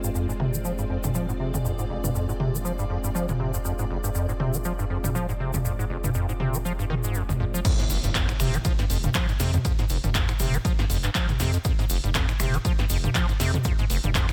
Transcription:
Already playing: F1 G#3 C4 F4 D5
0.04 G2, shaker
0.15 F2, shaker
0.29 G#2, shaker
0.40 C3, mid tom
0.54 F3, shaker
0.65 F3, shaker
0.78 G2, shaker
0.90 F2
1.04 G2, mid tom, shaker
1.15 F3, shaker
1.29 G#2, shaker
1.40 C3
1.54 F2, mid tom, shaker
1.65 F2, shaker
1.79 G#2, shaker
1.90 F1
2.04 G2, mid tom, shaker
2.15 F2, shaker
2.29 G#2, shaker
2.40 C3, mid tom
2.54 F3, shaker
2.65 F3, shaker
2.79 G2, shaker
2.90 F2
3.04 G2, shaker
3.15 F3, shaker
3.29 G#2, mid tom, shaker
3.40 C3
3.54 F2, shaker
3.65 F2, shaker
3.79 G#2, shaker
3.90 F1
4.04 G2, shaker
4.15 F2, shaker
4.29 G#2, shaker
4.40 C3, mid tom
4.54 F3, shaker
4.64 F3, shaker
4.79 G2, shaker
4.90 F2
5.04 G2, mid tom, shaker
5.15 F3, shaker
5.29 G#2, shaker
5.40 C3
5.54 F2, mid tom, shaker
5.65 F2, shaker
5.79 G#2, shaker
5.90 F1
6.04 G2, mid tom, shaker
6.14 F2, shaker
6.29 G#2, shaker
6.40 C3, mid tom
6.54 F3, shaker
6.65 F3, shaker
6.79 G2, shaker
6.90 D#3, mid tom
7.04 G#2, shaker
7.14 F2, shaker
7.29 F2, mid tom, shaker
7.40 F2
7.54 F3, shaker
7.65 F2, kick, closed hi-hat, crash, ride, impact, shaker
7.79 G#2, snare, closed hi-hat, shaker
7.90 F1, open hi-hat, shaker
8.04 F1 G2, closed hi-hat, shaker
8.15 F2, kick, clap, closed hi-hat, ride, shaker
8.29 G#2, finger snap, closed hi-hat, shaker
8.40 F1 C3, finger snap, open hi-hat, mid tom, shaker
8.54 F3, closed hi-hat, shaker
8.65 F3, kick, closed hi-hat, ride, shaker
8.79 G2, snare, closed hi-hat, shaker
8.90 F1 F2, open hi-hat, shaker
9.03 G2, closed hi-hat, mid tom, shaker
9.14 F3, kick, clap, closed hi-hat, ride, shaker
9.29 G#2, closed hi-hat, shaker
9.40 F2 C3, snare, open hi-hat, shaker
9.53 F2, closed hi-hat, mid tom, shaker
9.65 F2, kick, closed hi-hat, ride, shaker
9.79 G#2, snare, closed hi-hat, shaker
9.89 F1, open hi-hat, shaker
10.04 F1 G2, closed hi-hat, mid tom, shaker
10.15 F2, kick, clap, closed hi-hat, ride, shaker
10.29 G#2, finger snap, closed hi-hat, shaker
10.39 F1 C3, open hi-hat, mid tom, shaker
10.54 F3, closed hi-hat, shaker
10.65 F3, kick, closed hi-hat, ride, shaker
10.79 G2, snare, closed hi-hat, shaker
10.90 F1 F2, open hi-hat, shaker
11.03 G2, clap, closed hi-hat, shaker
11.15 F3, kick, clap, closed hi-hat, ride, shaker
11.29 G#2, closed hi-hat, mid tom, shaker
11.40 F2 C3, snare, open hi-hat, shaker
11.53 F2, closed hi-hat, shaker
11.65 F2, kick, closed hi-hat, ride, shaker
11.79 G#2, snare, closed hi-hat, shaker
11.90 F1, open hi-hat, shaker
12.04 F1 G2, closed hi-hat, shaker
12.15 F2, kick, clap, closed hi-hat, ride, shaker
12.29 G#2, finger snap, closed hi-hat, shaker
12.40 F1 C3, finger snap, open hi-hat, mid tom, shaker
12.54 F3, closed hi-hat, shaker
12.65 F3, kick, closed hi-hat, ride, shaker
12.79 G2, snare, closed hi-hat, shaker
12.90 F1 F2, open hi-hat, shaker
13.04 G2, closed hi-hat, mid tom, shaker
13.15 F3, kick, clap, closed hi-hat, ride, shaker
13.29 G#2, closed hi-hat, shaker
13.40 F2 C3, snare, open hi-hat, shaker
13.54 F2, mid tom, shaker
13.64 F2, kick, closed hi-hat, ride, shaker
13.79 G#2, snare, closed hi-hat, shaker
13.90 F1, open hi-hat, shaker
14.04 F1 G2, closed hi-hat, mid tom, shaker
14.15 F2, kick, clap, closed hi-hat, ride, shaker
14.29 G#2, finger snap, closed hi-hat, shaker

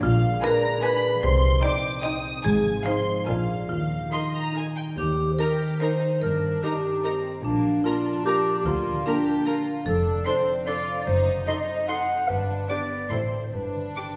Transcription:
Already playing: F3 A#3 D4 F4 A#4 F5 A#5
0.03 A#1 A#2 F4 F5
0.13 G#3
0.23 D4
0.34 B4
0.43 D4 G#4 A#4 B4 G#5 A#5
0.54 D5
0.64 B5
0.74 D5
0.83 D4 G#4 B4 G#5 B5
0.95 B4
1.04 D4
1.14 F3
1.23 C2 C3 C5 C6
1.34 G3
1.44 D#4
1.54 C5
1.63 D#4 G4 C5 D5 G5 D6
1.75 D#5
1.85 C6
1.95 D#5
2.03 D#4 G4 C5 D#5 G5 D#6
2.15 C5
2.25 D#4
2.35 C4
2.44 G#1 G#2 G#4 G#5
2.55 F3
2.66 D#4
2.76 C5
2.85 D#4 C5 F5 C6
2.97 D#5
3.07 C6
3.17 D#5
3.27 A#1 A#2 D4 F4 A#4 F5 G#5
3.38 G#3
3.49 D4
3.59 A#4
3.69 D#2 D#3 F4 F5
3.80 D#4
3.91 A#4
4.02 G4
4.12 D#4 A#4 D#5 C6
4.23 A#5
4.34 G5 A#5
4.55 D#4 A#4 D#5 G#5
4.66 G4
4.76 A#4 G5
4.87 G3
4.97 D#2 D#3 G4, triangle
5.19 A#3
5.33 C5
5.39 D#4 G4 A#4 A#5
5.60 A#4
5.80 D#4 A#4 C5 A#5
6.01 D#5
6.21 G1 G2 D4 A#4
6.43 G3
6.63 A#3 D#4 G4 A#4 A#5
6.83 A#4
7.02 C4 D#4 A#4 D#5 A#5
7.24 A#4
7.44 A#1 A#2 A#3 D4
7.65 F3
7.84 A#3 D4 F4 A#4 A#5
8.05 A#4
8.25 A#3 G4 A#4 F5 A#5
8.46 A#4
8.59 G4
8.66 D2 D3 A#3 F4
8.87 D4
9.06 A#3 D4 G4 A#4 A#5
9.27 A#4
9.46 A#3 F4 A#4 F5 A#5
9.67 A#4
9.86 F1 F2 D4 A4
10.07 C3
10.25 C4 D4 A4 C5 C6
10.48 D5
10.67 D4 F4 A4 D5 A5 C6
10.88 C5
11.01 D5
11.06 F#1 F#2 D#4 C5
11.28 F#3
11.47 C4 D#4 A4 D#5 C6
11.55 D5
11.61 D#5
11.87 D#4 A4 F#5 A5 C6
12.09 C5
12.28 G1 G2 D4 B4
12.49 D3
12.68 B3 D4 G4 D5 D6
12.91 D5
13.10 A1 A2 A3 C4 E4 C5 C6
13.32 E4 A4
13.46 C5
13.53 G1 G2 D4 B4
13.75 D3
13.96 D4 G4 D6

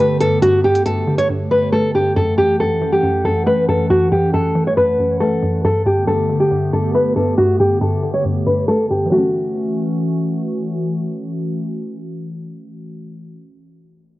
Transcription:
Already playing: G2 D3 A3 B3 G4
0.00 A3 B4
0.20 G2 A4, closed hi-hat
0.42 G2 F#4, closed hi-hat
0.64 G2 G4
0.75 closed hi-hat
0.86 G2 A4, closed hi-hat
1.07 D3
1.18 C#5, closed hi-hat
1.29 G2
1.51 G2 B4
1.72 A3 A4
1.95 G2 G4
2.16 F#2 E3 C#4 A4 F#5
2.38 F#2 G4
2.60 F#2 A4
2.82 E3
2.93 G4
3.03 F#2
3.25 F#2 A4
3.47 A3 B4
3.69 F#2 A4
3.90 F#2 F#4
4.12 F#2 G4
4.33 F#2 A4
4.55 E3
4.67 C#5
4.77 F#2 B4
4.99 F#2
5.20 A3 A4
5.43 F#2
5.64 G2 D3 A3 B3 G4 A4
5.86 G2 G4
6.07 G2 A4
6.29 D3
6.40 G4
6.51 G2
6.73 G2 A4
6.95 A3 B4
7.16 G2 A4
7.38 G2 F#4
7.60 G2 G4
7.81 G2 A4
8.03 D3
8.14 C#5
8.25 G2
8.46 G2 B4
8.68 A3 A4
8.90 G2 G4
9.06 E3 F#3
9.12 E3 A3 C#4 F#4
9.18 C#4

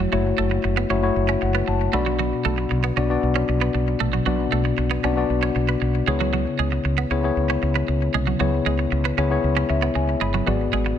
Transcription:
Already playing: A3 E4 F#4 C#5
0.12 F#1 F#3 A3 E4 F#4 C#5
0.38 F#1 A3
0.51 muted clean electric guitar stroke
0.64 F#1, muted clean electric guitar stroke
0.77 B3
0.90 F#1 A3 C#4 E4 F#4 C#5
1.02 A3 E4 F#4 C#5
1.16 F#1
1.29 C#4
1.42 F#1 F#5, muted clean electric guitar stroke
1.55 B3
1.68 F#1 A5, muted clean electric guitar stroke
1.93 B1 B2 A3 B3 D4 F#4 D5 B5
2.06 F#3
2.19 F#3
2.45 B1 A3
2.58 muted clean electric guitar stroke
2.71 B1, muted clean electric guitar stroke
2.84 B3
2.97 B1 B3 C#4 D4 F#4 D5
3.10 B3 D4 F#4 D5
3.23 B1
3.36 C#4
3.49 B1, muted clean electric guitar stroke
3.61 B3
3.75 B1, muted clean electric guitar stroke
4.00 A#1 B2 A3
4.13 F#3
4.26 B1 F#3 B3 D4 F#4 D5
4.52 B1 A3
4.65 muted clean electric guitar stroke
4.78 B1, muted clean electric guitar stroke
4.91 B3
5.04 B1 B3 C#4 D4 F#4 D5
5.17 B3 D4 F#4 D5
5.30 B1
5.43 C#4
5.56 B1, muted clean electric guitar stroke
5.69 B3
5.82 B1, muted clean electric guitar stroke
6.07 C#2 C#3 G#3 B3 E4 G#4 C#5
6.21 F#3
6.33 F#3
6.59 C#2 G#3
6.72 muted clean electric guitar stroke
6.85 C#2, muted clean electric guitar stroke
6.98 B3
7.10 C#2 B3 C#4 E4 G#4 C#5
7.23 B3 E4 G#4 C#5
7.37 C#2
7.50 C#4
7.63 C#2, muted clean electric guitar stroke
7.76 B3
7.88 C#2, muted clean electric guitar stroke
8.14 C2 C#3 G#3
8.27 F#3
8.40 C#2 F#3 B3 E4 G#4 C#5
8.66 C#2 G#3
8.79 muted clean electric guitar stroke
8.92 C#2, muted clean electric guitar stroke
9.05 B3
9.18 C#2 B3 C#4 E4 G#4 C#5
9.30 B3 E4 G#4 C#5
9.44 C#2
9.57 C#4
9.70 C#2 E5, muted clean electric guitar stroke
9.82 B3
9.95 C#2 G#5, muted clean electric guitar stroke
10.21 G1 G#3 B5
10.34 F#3
10.46 G#1 G#2 F#3 B3 F#4 G#4 D5
10.73 G#1 G#3
10.86 muted clean electric guitar stroke

